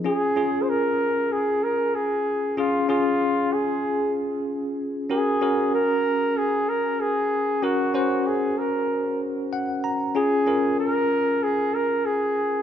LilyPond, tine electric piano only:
\new Staff \with { instrumentName = "Tine electric piano" } { \time 4/4 \key des \major \tempo 4 = 95 <des' f' aes'>8 <des' f' aes'>4. r2 | <des' f' aes'>8 <des' f' aes'>4. r2 | <des' ges' bes'>8 <des' ges' bes'>4. r2 | <des' ges' bes'>8 <des' ges' c''>4. r4 ges''8 bes''8 |
<des' f' aes'>8 <des' f' bes'>4. r2 | }